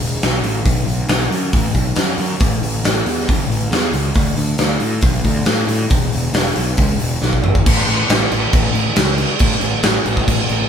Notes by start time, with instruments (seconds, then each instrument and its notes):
0.01 picked electric bass E1, open hi-hat
0.22 picked electric bass B1, snare, open hi-hat
0.44 picked electric bass A1, open hi-hat
0.65 picked electric bass B1, kick, open hi-hat
0.86 picked electric bass B1, open hi-hat
1.08 picked electric bass B1, snare, open hi-hat
1.30 picked electric bass F#2, open hi-hat
1.53 picked electric bass A1, kick, open hi-hat
1.74 picked electric bass B1, kick, open hi-hat
1.96 picked electric bass F#2, snare, open hi-hat
2.18 picked electric bass F#2, open hi-hat
2.40 picked electric bass A1, kick, open hi-hat
2.62 picked electric bass A1, open hi-hat
2.84 picked electric bass A1, snare, open hi-hat
3.06 picked electric bass E2, open hi-hat
3.20 snare
3.28 picked electric bass F#1, kick, open hi-hat
3.48 picked electric bass A1, open hi-hat
3.70 picked electric bass E2, snare, open hi-hat
3.93 picked electric bass C#2, open hi-hat
4.14 picked electric bass D2, kick, open hi-hat
4.36 picked electric bass D2, open hi-hat
4.58 picked electric bass D2, snare, open hi-hat
4.80 picked electric bass A2, open hi-hat
5.01 picked electric bass B1, kick, open hi-hat
5.24 picked electric bass D2, kick, open hi-hat
5.46 picked electric bass A2, snare, open hi-hat
5.67 picked electric bass A2, open hi-hat
5.90 picked electric bass E1, kick, open hi-hat
6.12 picked electric bass E1, open hi-hat
6.33 picked electric bass E1, snare, open hi-hat
6.56 picked electric bass B1, open hi-hat
6.77 picked electric bass C#2, kick, open hi-hat
6.99 picked electric bass E1, open hi-hat
7.22 picked electric bass B1, snare
7.33 kick
7.43 picked electric bass G#1, mid tom
7.55 kick
7.66 picked electric bass A1, kick, crash
7.78 snare
7.87 picked electric bass A1, crash
8.09 picked electric bass A1, snare, crash
8.32 picked electric bass A1, crash
8.53 picked electric bass A1, kick, crash
8.74 picked electric bass A1, crash
8.96 picked electric bass C#2, snare, crash
9.18 crash
9.39 picked electric bass A1, kick, crash
9.51 snare
9.61 picked electric bass A1, crash
9.83 picked electric bass A1, snare, crash
9.95 snare
10.06 picked electric bass A1, crash
10.17 kick
10.27 picked electric bass A1, kick, crash
10.49 picked electric bass A1, crash